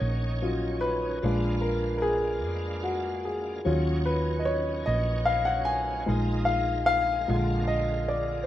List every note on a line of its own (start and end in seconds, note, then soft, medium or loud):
0.00 1.19 A#1 medium
0.00 1.19 D#3 soft
0.00 1.19 F3 medium
0.00 0.41 F#3 soft
0.00 0.41 C#4 soft
0.00 1.19 C#4 soft
0.00 1.19 D#4 soft
0.00 0.78 C#5 medium
0.00 1.19 C#5 medium
0.00 1.25 D#5 medium
0.00 1.25 F#5 medium
0.42 0.79 F#3 soft
0.42 0.79 C#4 soft
0.42 0.79 F4 soft
0.81 1.65 B4 medium
1.22 2.44 A#1 medium
1.22 3.62 G#3 medium
1.22 2.41 G#3 soft
1.22 3.61 A#3 medium
1.22 3.61 D4 soft
1.22 2.41 D4 soft
1.22 2.41 F4 medium
1.22 3.62 F5 medium
1.61 1.96 A#4 medium
1.97 2.04 A#4 medium
2.02 2.86 G#4 medium
2.44 3.62 F2 loud
2.83 3.26 F#4 medium
3.25 3.63 G#4 medium
3.65 4.83 D#2 medium
3.65 4.83 F#3 medium
3.65 6.04 F#3 medium
3.65 6.04 C#4 medium
3.65 4.83 C#4 soft
3.65 6.04 D#4 medium
3.65 4.83 F4 medium
3.65 6.04 C#5 medium
4.06 4.40 B4 medium
4.39 4.47 D#5 medium
4.45 4.88 C#5 medium
4.86 6.05 A#1 medium
4.86 5.28 D#5 medium
5.26 5.45 F5 medium
5.45 5.67 F#5 medium
5.65 6.43 G#5 medium
6.06 7.25 A#1 medium
6.06 6.61 G#3 soft
6.06 7.29 G#3 medium
6.06 6.61 D#4 soft
6.06 7.30 D#4 medium
6.06 6.62 F4 soft
6.06 7.29 F4 medium
6.06 7.30 A#4 medium
6.45 6.55 F5 medium
6.86 7.71 F5 loud
7.28 8.46 A#1 loud
7.28 8.46 D3 soft
7.28 8.46 G#3 soft
7.28 8.46 G#3 medium
7.28 8.46 F4 soft
7.28 8.46 F4 medium
7.28 7.36 G#4 medium
7.36 8.46 A#4 medium
7.67 8.10 D#5 medium
8.08 8.44 D5 medium
8.43 8.46 C5 soft